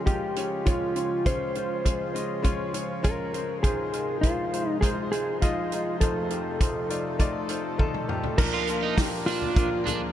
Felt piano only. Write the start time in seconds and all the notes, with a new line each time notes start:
Already playing: C#3 G#3 C#4 F4 G4 C#5 D#5
0.06 G#3 C#4 F4 G4
0.36 G#3 C#4 F4 C#5
0.65 G#3 C#4 F4 C#5
0.95 G#3 C#4 F4 C#5
1.25 C#3 G#3 C#4 F4 C#5
1.55 G#3 C#4 F4 C5
1.84 G#3 C#4 F4 G#4
2.13 G#3 C#4 F4 D#5
2.42 G#3 C#4 F4 C#5
2.73 G#3 C#4 F4 C#5
3.03 G#3 C#4 F4 C#5
3.33 G#3 C#4 F4 C5
3.63 G#2 D#3 G#3 D#4 F4 C5
3.92 G#3 D#4 F4 A#4
4.22 G#3 D#4 F4 C5
4.52 G#3 D#4 F4 C5
4.82 G#3 D#4 F4 C5
5.12 G#3 D#4 F4 C5
5.41 G#3 D#4 F4 D#5
5.72 G#3 D#4 F4 D#5
6.02 F2 C3 A3 D#4 F4 C5
6.30 A3 D#4 F4 G4
6.60 A3 D#4 F4 C5
6.89 A3 D#4 F4 D5
7.19 A3 D#4 F4 D5
7.49 A3 D#4 F4 C5
7.78 A3 D#4 F4 A4
8.08 A3 D#4 F4 G4
8.38 A#2 F3 A#3 D4 F4
8.68 A#3 D4 F4
8.96 A#3 D4 G4
9.26 A#3 D4 F4
9.56 A#3 D4 F4
9.85 A#3 D4 G#4